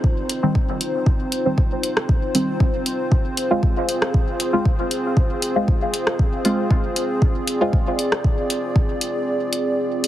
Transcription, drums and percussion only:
0.04 kick
0.29 closed hi-hat
0.55 kick
0.81 closed hi-hat
1.06 kick
1.32 closed hi-hat
1.58 kick
1.83 closed hi-hat
1.97 cross-stick
2.09 kick
2.35 closed hi-hat
2.60 kick
2.86 closed hi-hat
3.12 kick
3.37 closed hi-hat
3.63 kick
3.89 closed hi-hat
4.02 cross-stick
4.14 kick
4.40 closed hi-hat
4.65 kick
4.91 closed hi-hat
5.17 kick
5.42 closed hi-hat
5.68 kick
5.94 closed hi-hat
6.07 cross-stick
6.19 kick
6.45 closed hi-hat
6.71 kick
6.96 closed hi-hat
7.22 kick
7.47 closed hi-hat
7.73 kick
7.99 closed hi-hat
8.12 cross-stick
8.24 kick
8.50 closed hi-hat
8.76 kick
9.01 closed hi-hat
9.53 closed hi-hat
10.04 closed hi-hat

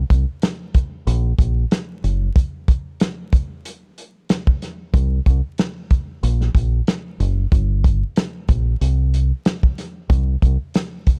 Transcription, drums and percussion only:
0.10 kick, closed hi-hat
0.42 snare, closed hi-hat
0.74 kick, closed hi-hat
1.07 closed hi-hat
1.39 kick, closed hi-hat
1.71 snare, closed hi-hat
2.04 closed hi-hat
2.36 kick, closed hi-hat
2.68 kick, closed hi-hat
3.00 snare, closed hi-hat
3.32 kick, closed hi-hat
3.65 closed hi-hat
3.98 closed hi-hat
4.29 snare, closed hi-hat
4.47 kick
4.62 snare, closed hi-hat
4.94 kick, closed hi-hat
5.26 kick, closed hi-hat
5.58 snare, closed hi-hat
5.91 kick, closed hi-hat
6.23 closed hi-hat
6.41 snare
6.55 kick, closed hi-hat
6.87 snare, closed hi-hat
7.20 closed hi-hat
7.52 kick, closed hi-hat
7.84 kick, closed hi-hat
8.16 snare, closed hi-hat
8.49 kick, closed hi-hat
8.81 closed hi-hat
9.14 closed hi-hat
9.45 snare, closed hi-hat
9.63 kick
9.78 snare, closed hi-hat
10.10 kick, closed hi-hat
10.42 kick, closed hi-hat
10.74 snare, closed hi-hat
11.07 kick, closed hi-hat

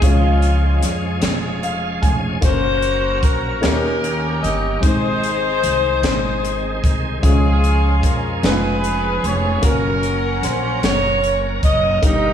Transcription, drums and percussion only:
0.02 kick, closed hi-hat
0.42 closed hi-hat
0.82 snare, closed hi-hat
1.22 snare, closed hi-hat
1.63 closed hi-hat
2.03 kick, closed hi-hat
2.42 kick, closed hi-hat
2.82 closed hi-hat
3.23 kick, closed hi-hat
3.63 snare, closed hi-hat
4.04 closed hi-hat
4.44 closed hi-hat
4.83 kick, closed hi-hat
5.24 closed hi-hat
5.64 closed hi-hat
6.03 snare, closed hi-hat
6.45 closed hi-hat
6.84 kick, closed hi-hat
7.23 kick, closed hi-hat
7.64 closed hi-hat
8.03 kick, closed hi-hat
8.43 snare, closed hi-hat
8.84 closed hi-hat
9.24 closed hi-hat
9.63 kick, closed hi-hat
10.03 closed hi-hat
10.43 snare, closed hi-hat
10.83 snare, closed hi-hat
11.24 closed hi-hat
11.63 kick, closed hi-hat
12.03 kick, closed hi-hat

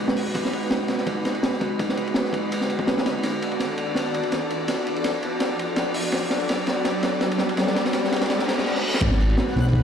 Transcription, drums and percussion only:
0.08 snare
0.17 open hi-hat
0.35 kick, ride
0.45 snare
0.53 ride
0.63 ride
0.70 snare, ride
0.80 snare
0.88 snare, ride
0.98 snare
1.06 kick, ride
1.25 snare, ride
1.35 ride
1.43 snare, ride
1.53 snare
1.61 kick, ride
1.79 kick, ride
1.89 snare
1.97 ride
2.07 ride
2.14 snare, ride
2.25 snare
2.33 kick, ride
2.52 ride
2.61 snare
2.70 ride
2.79 kick
2.87 snare, ride
2.98 snare
3.06 snare, ride
3.23 snare, ride
3.42 ride
3.52 ride
3.59 snare, ride
3.78 ride
3.95 snare, ride
4.14 ride
4.23 ride
4.32 snare, ride
4.50 ride
4.68 snare, ride
4.87 ride
4.96 ride
5.04 snare, ride
5.23 ride
5.40 snare, ride
5.59 ride
5.76 snare, ride
5.94 open hi-hat
6.12 snare, ride
6.30 snare, ride
6.40 ride
6.49 snare, ride
6.67 snare, ride
6.85 snare, ride
7.03 snare, ride
7.21 snare, ride
7.31 ride
7.38 snare
7.49 ride
7.57 snare, ride
7.67 snare
7.75 snare, ride
7.85 snare, ride
7.93 snare, ride
8.04 snare
8.12 snare, ride
8.16 ride
8.21 snare, ride
8.26 snare, ride
8.30 ride
8.39 snare
8.48 snare, ride
8.58 snare
8.66 snare
8.75 snare
8.94 snare
9.02 kick, crash, ride
9.12 snare
9.21 ride
9.30 ride
9.38 snare, ride
9.48 snare
9.57 snare, ride
9.67 snare
9.73 kick, ride

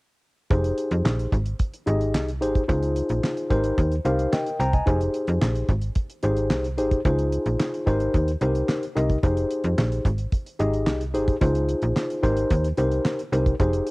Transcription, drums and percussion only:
0.51 kick, closed hi-hat
0.64 closed hi-hat
0.78 closed hi-hat
0.91 closed hi-hat
1.06 snare, clap
1.19 closed hi-hat
1.32 kick, closed hi-hat
1.46 closed hi-hat
1.59 kick, closed hi-hat
1.74 closed hi-hat
1.87 closed hi-hat
2.01 closed hi-hat
2.15 snare, clap
2.28 closed hi-hat
2.42 closed hi-hat
2.55 kick, closed hi-hat
2.69 kick, closed hi-hat
2.83 closed hi-hat
2.96 closed hi-hat
3.09 closed hi-hat
3.24 snare, clap
3.37 closed hi-hat
3.50 kick, closed hi-hat
3.64 closed hi-hat
3.78 kick, closed hi-hat
3.92 closed hi-hat
4.05 closed hi-hat
4.19 closed hi-hat
4.33 snare, clap
4.46 closed hi-hat
4.60 closed hi-hat
4.73 kick, closed hi-hat
4.87 kick, closed hi-hat
5.01 closed hi-hat
5.14 closed hi-hat
5.27 closed hi-hat
5.42 snare, clap
5.55 closed hi-hat
5.69 kick, closed hi-hat
5.81 closed hi-hat
5.95 kick, closed hi-hat
6.10 closed hi-hat
6.23 closed hi-hat
6.37 closed hi-hat
6.50 snare, clap
6.64 closed hi-hat
6.78 closed hi-hat
6.91 kick, closed hi-hat
7.05 kick, closed hi-hat
7.19 closed hi-hat
7.32 closed hi-hat
7.46 closed hi-hat
7.60 snare, clap
7.74 closed hi-hat
7.87 kick, closed hi-hat
8.00 closed hi-hat
8.14 kick, closed hi-hat
8.28 closed hi-hat
8.41 closed hi-hat
8.55 closed hi-hat
8.69 snare, clap
8.83 closed hi-hat
8.97 closed hi-hat
9.10 kick, closed hi-hat
9.23 kick, closed hi-hat
9.37 closed hi-hat
9.51 closed hi-hat
9.64 closed hi-hat
9.78 snare, clap
9.92 closed hi-hat
10.05 kick, closed hi-hat
10.18 closed hi-hat
10.32 kick, closed hi-hat
10.46 closed hi-hat
10.60 closed hi-hat
10.73 closed hi-hat
10.87 snare, clap
11.01 closed hi-hat
11.15 closed hi-hat
11.28 kick, closed hi-hat
11.41 kick, closed hi-hat
11.55 closed hi-hat
11.69 closed hi-hat
11.82 closed hi-hat
11.96 snare, clap
12.10 closed hi-hat
12.23 kick, closed hi-hat
12.37 closed hi-hat
12.50 kick, closed hi-hat
12.64 closed hi-hat
12.77 closed hi-hat
12.91 closed hi-hat
13.05 snare, clap
13.19 closed hi-hat
13.33 closed hi-hat
13.46 kick, closed hi-hat
13.60 kick, closed hi-hat
13.73 closed hi-hat
13.87 closed hi-hat

